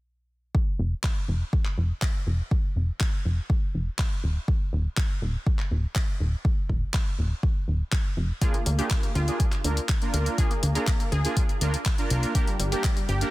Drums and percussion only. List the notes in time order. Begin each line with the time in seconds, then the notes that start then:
0.55 kick
1.04 kick, clap
1.53 kick
1.65 clap
2.02 kick, clap
2.51 kick
3.00 kick, clap
3.50 kick
3.99 kick, clap
4.48 kick
4.97 kick, clap
5.47 kick
5.59 clap
5.95 kick, clap
6.45 kick
6.69 kick
6.94 kick, clap
7.43 kick
7.92 kick, clap
8.42 kick, closed hi-hat
8.54 closed hi-hat
8.66 closed hi-hat
8.79 closed hi-hat
8.90 kick, clap, closed hi-hat
9.03 closed hi-hat
9.15 closed hi-hat
9.28 closed hi-hat
9.40 kick, closed hi-hat
9.52 clap, closed hi-hat
9.64 closed hi-hat
9.77 closed hi-hat
9.89 kick, clap, closed hi-hat
10.02 closed hi-hat
10.14 closed hi-hat
10.26 closed hi-hat
10.38 kick, closed hi-hat
10.51 closed hi-hat
10.63 closed hi-hat
10.75 closed hi-hat
10.87 kick, clap, closed hi-hat
11.00 closed hi-hat
11.12 closed hi-hat
11.25 closed hi-hat
11.37 kick, closed hi-hat
11.49 closed hi-hat
11.61 closed hi-hat
11.74 closed hi-hat
11.86 kick, clap, closed hi-hat
11.98 closed hi-hat
12.10 closed hi-hat
12.23 closed hi-hat
12.35 kick, closed hi-hat
12.47 closed hi-hat
12.60 closed hi-hat
12.72 closed hi-hat
12.84 kick, clap, closed hi-hat
12.97 closed hi-hat
13.09 closed hi-hat
13.21 closed hi-hat